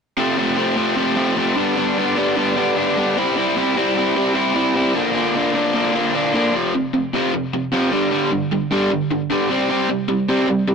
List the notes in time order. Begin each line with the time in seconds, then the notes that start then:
0.17 F2 C3 F3 A3 C4
0.36 F2 C3 F3 A3 C4
0.56 F2 C3 F3 A3 C4
0.75 F2 C3 F3 A3 C4
0.96 F2 C3 F3 A3 C4
1.15 F2 C3 F3 A3 C4
1.35 F2 C3 F3 A3 C4
1.55 G2 D3 G3 B3 D4
1.75 G2 D3 G3 B3 D4
1.96 G2 D3 G3 B3 D4
2.16 G2 D3 G3 B3 D4
2.36 G2 D3 G3 B3 D4
2.56 G2 D3 G3 B3 D4
2.76 G2 D3 G3 B3 D4
2.96 G2 D3 G3 B3 D4
3.16 C3 G3 C4 E4
3.36 C3 G3 C4 E4
3.56 C3 G3 C4 E4
3.76 C3 G3 C4 E4
3.95 C3 G3 C4 E4
4.15 C3 G3 C4 E4
4.34 C3 G3 C4 E4
4.55 C3 G3 C4 E4
4.74 C3 G3 C4 E4
4.94 A#2 D3 F3 A#3 D4
5.13 A#2 D3 F3 A#3 D4
5.34 A#2 D3 F3 A#3 D4
5.53 A#2 D3 F3 A#3 D4
5.74 A#2 D3 F3 A#3 D4
5.92 A#2 D3 F3 A#3 D4
6.13 A#2 D3 F3 A#3 D4
6.33 A#2 D3 F3 A#3 D4
6.53 F2 C3 F3
6.74 F2 C3
6.93 F2 C3
7.13 F2 C3 F3
7.34 F2 C3
7.53 F2 C3
7.72 F2 C3 F3
7.92 G2 D3 G3
8.11 G2 D3 G3
8.32 G2 D3
8.52 G2 D3
8.71 G2 D3 G3
8.91 G2 D3
9.11 G2 D3
9.30 G2 D3 G3
9.50 C3 G3 C4
9.69 C3 G3 C4
9.89 C3 G3
10.08 C3 G3
10.29 C3 G3 C4
10.48 C3 G3
10.68 C3 G3